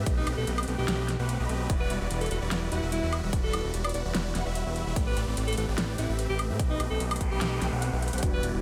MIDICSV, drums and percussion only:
0, 0, Header, 1, 2, 480
1, 0, Start_track
1, 0, Key_signature, 1, "minor"
1, 0, Tempo, 408163
1, 76, Time_signature, 4, 2, 24, 8
1, 10132, End_track
2, 0, Start_track
2, 0, Title_t, "Drums"
2, 75, Note_on_c, 9, 42, 72
2, 76, Note_on_c, 9, 36, 123
2, 193, Note_off_c, 9, 42, 0
2, 194, Note_off_c, 9, 36, 0
2, 316, Note_on_c, 9, 42, 65
2, 316, Note_on_c, 9, 76, 61
2, 433, Note_off_c, 9, 42, 0
2, 433, Note_off_c, 9, 76, 0
2, 557, Note_on_c, 9, 42, 78
2, 674, Note_off_c, 9, 42, 0
2, 682, Note_on_c, 9, 42, 47
2, 682, Note_on_c, 9, 76, 75
2, 740, Note_off_c, 9, 42, 0
2, 740, Note_on_c, 9, 42, 59
2, 796, Note_off_c, 9, 42, 0
2, 796, Note_on_c, 9, 42, 62
2, 800, Note_off_c, 9, 76, 0
2, 914, Note_off_c, 9, 42, 0
2, 1037, Note_on_c, 9, 38, 126
2, 1037, Note_on_c, 9, 42, 75
2, 1154, Note_off_c, 9, 38, 0
2, 1154, Note_off_c, 9, 42, 0
2, 1276, Note_on_c, 9, 38, 63
2, 1276, Note_on_c, 9, 42, 63
2, 1394, Note_off_c, 9, 38, 0
2, 1394, Note_off_c, 9, 42, 0
2, 1516, Note_on_c, 9, 42, 75
2, 1634, Note_off_c, 9, 42, 0
2, 1756, Note_on_c, 9, 42, 56
2, 1873, Note_off_c, 9, 42, 0
2, 1996, Note_on_c, 9, 36, 120
2, 1996, Note_on_c, 9, 42, 74
2, 2114, Note_off_c, 9, 36, 0
2, 2114, Note_off_c, 9, 42, 0
2, 2236, Note_on_c, 9, 42, 63
2, 2354, Note_off_c, 9, 42, 0
2, 2476, Note_on_c, 9, 42, 79
2, 2594, Note_off_c, 9, 42, 0
2, 2602, Note_on_c, 9, 42, 48
2, 2659, Note_off_c, 9, 42, 0
2, 2659, Note_on_c, 9, 42, 60
2, 2716, Note_off_c, 9, 42, 0
2, 2716, Note_on_c, 9, 42, 63
2, 2833, Note_off_c, 9, 42, 0
2, 2956, Note_on_c, 9, 38, 119
2, 2956, Note_on_c, 9, 42, 77
2, 3074, Note_off_c, 9, 38, 0
2, 3074, Note_off_c, 9, 42, 0
2, 3196, Note_on_c, 9, 42, 62
2, 3313, Note_off_c, 9, 42, 0
2, 3436, Note_on_c, 9, 42, 77
2, 3553, Note_off_c, 9, 42, 0
2, 3676, Note_on_c, 9, 42, 56
2, 3676, Note_on_c, 9, 76, 60
2, 3793, Note_off_c, 9, 42, 0
2, 3793, Note_off_c, 9, 76, 0
2, 3916, Note_on_c, 9, 36, 114
2, 3916, Note_on_c, 9, 42, 76
2, 4033, Note_off_c, 9, 36, 0
2, 4034, Note_off_c, 9, 42, 0
2, 4156, Note_on_c, 9, 42, 65
2, 4156, Note_on_c, 9, 76, 64
2, 4273, Note_off_c, 9, 42, 0
2, 4273, Note_off_c, 9, 76, 0
2, 4396, Note_on_c, 9, 42, 77
2, 4513, Note_off_c, 9, 42, 0
2, 4521, Note_on_c, 9, 42, 50
2, 4521, Note_on_c, 9, 76, 82
2, 4578, Note_off_c, 9, 42, 0
2, 4578, Note_on_c, 9, 42, 65
2, 4636, Note_off_c, 9, 42, 0
2, 4636, Note_on_c, 9, 42, 66
2, 4639, Note_off_c, 9, 76, 0
2, 4754, Note_off_c, 9, 42, 0
2, 4876, Note_on_c, 9, 38, 117
2, 4876, Note_on_c, 9, 42, 77
2, 4993, Note_off_c, 9, 38, 0
2, 4993, Note_off_c, 9, 42, 0
2, 5116, Note_on_c, 9, 38, 59
2, 5116, Note_on_c, 9, 42, 66
2, 5233, Note_off_c, 9, 38, 0
2, 5233, Note_off_c, 9, 42, 0
2, 5355, Note_on_c, 9, 42, 78
2, 5473, Note_off_c, 9, 42, 0
2, 5596, Note_on_c, 9, 42, 62
2, 5713, Note_off_c, 9, 42, 0
2, 5836, Note_on_c, 9, 36, 113
2, 5836, Note_on_c, 9, 42, 80
2, 5954, Note_off_c, 9, 36, 0
2, 5954, Note_off_c, 9, 42, 0
2, 6076, Note_on_c, 9, 42, 69
2, 6194, Note_off_c, 9, 42, 0
2, 6316, Note_on_c, 9, 42, 80
2, 6434, Note_off_c, 9, 42, 0
2, 6443, Note_on_c, 9, 42, 51
2, 6499, Note_off_c, 9, 42, 0
2, 6499, Note_on_c, 9, 42, 65
2, 6556, Note_off_c, 9, 42, 0
2, 6556, Note_on_c, 9, 42, 66
2, 6674, Note_off_c, 9, 42, 0
2, 6796, Note_on_c, 9, 38, 118
2, 6796, Note_on_c, 9, 42, 80
2, 6913, Note_off_c, 9, 38, 0
2, 6913, Note_off_c, 9, 42, 0
2, 7036, Note_on_c, 9, 42, 68
2, 7153, Note_off_c, 9, 42, 0
2, 7276, Note_on_c, 9, 42, 80
2, 7394, Note_off_c, 9, 42, 0
2, 7516, Note_on_c, 9, 42, 61
2, 7516, Note_on_c, 9, 76, 63
2, 7633, Note_off_c, 9, 42, 0
2, 7633, Note_off_c, 9, 76, 0
2, 7755, Note_on_c, 9, 42, 82
2, 7756, Note_on_c, 9, 36, 114
2, 7873, Note_off_c, 9, 36, 0
2, 7873, Note_off_c, 9, 42, 0
2, 7996, Note_on_c, 9, 42, 68
2, 7996, Note_on_c, 9, 76, 64
2, 8113, Note_off_c, 9, 42, 0
2, 8113, Note_off_c, 9, 76, 0
2, 8236, Note_on_c, 9, 42, 84
2, 8353, Note_off_c, 9, 42, 0
2, 8362, Note_on_c, 9, 42, 51
2, 8362, Note_on_c, 9, 76, 82
2, 8419, Note_off_c, 9, 42, 0
2, 8419, Note_on_c, 9, 42, 67
2, 8476, Note_off_c, 9, 42, 0
2, 8476, Note_on_c, 9, 36, 59
2, 8476, Note_on_c, 9, 42, 70
2, 8480, Note_off_c, 9, 76, 0
2, 8593, Note_off_c, 9, 36, 0
2, 8594, Note_off_c, 9, 42, 0
2, 8716, Note_on_c, 9, 38, 118
2, 8716, Note_on_c, 9, 42, 82
2, 8834, Note_off_c, 9, 38, 0
2, 8834, Note_off_c, 9, 42, 0
2, 8956, Note_on_c, 9, 38, 58
2, 8956, Note_on_c, 9, 42, 71
2, 9074, Note_off_c, 9, 38, 0
2, 9074, Note_off_c, 9, 42, 0
2, 9197, Note_on_c, 9, 42, 85
2, 9314, Note_off_c, 9, 42, 0
2, 9437, Note_on_c, 9, 42, 55
2, 9499, Note_off_c, 9, 42, 0
2, 9499, Note_on_c, 9, 42, 62
2, 9562, Note_off_c, 9, 42, 0
2, 9562, Note_on_c, 9, 42, 75
2, 9619, Note_off_c, 9, 42, 0
2, 9619, Note_on_c, 9, 42, 85
2, 9676, Note_off_c, 9, 42, 0
2, 9676, Note_on_c, 9, 36, 119
2, 9676, Note_on_c, 9, 42, 81
2, 9793, Note_off_c, 9, 36, 0
2, 9794, Note_off_c, 9, 42, 0
2, 9916, Note_on_c, 9, 42, 69
2, 10033, Note_off_c, 9, 42, 0
2, 10132, End_track
0, 0, End_of_file